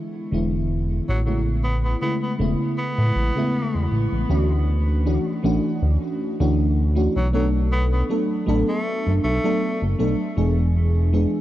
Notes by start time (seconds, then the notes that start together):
Already playing: D3 E3 G#3 B3 E4
0.31 E1 D3 E3 G#3 B3 E4
1.08 A1 F#3
1.25 C#3 F#3 G#3 A3 B3 E4
1.64 B3
1.84 B3
2.01 C#3 G#3 A3 B3 E4
2.23 B3
2.39 E1 C#3 G#3 A3 B3 E4
2.78 B3
2.98 A2
3.16 A1
3.35 C#3 G#3 A3 B3 E4
3.75 E2
3.92 A1
4.12 A1
4.29 D2 E3 A3 C#4 D4 F#4
5.05 E3 A3 C#4 D4 F#4
5.43 A1 E3 A3 C#4 D4 F#4
5.82 D2
6.40 D2 E3 A3 C#4 D4 F#4
6.95 E3 A3 C#4 D4 F#4
7.16 B1 F#3
7.33 F#3 A3 B3 D4 A4
7.72 B3
7.92 B3
8.09 F#3 A3 B3 D4 A4
8.46 A1 F#3 A3 B3 D4 A4
8.69 A3
9.07 F#1
9.24 B1 A3
9.44 F#3 A3 B3 D4 A4
9.82 F#1
9.99 B1 F#3 A3 B3 D4 A4
10.37 E1 E3 G#3 B3 D4 G#4
11.13 E3 G#3 B3 D4 G#4